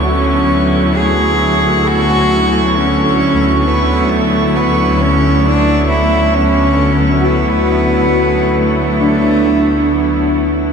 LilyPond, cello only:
\new Staff \with { instrumentName = "Cello" } { \time 4/4 \key d \major \tempo 4 = 67 cis'4 gis'4 fis'4 cis'4 | b8 a8 b8 cis'8 d'8 e'8 cis'4 | b4. a2 r8 | }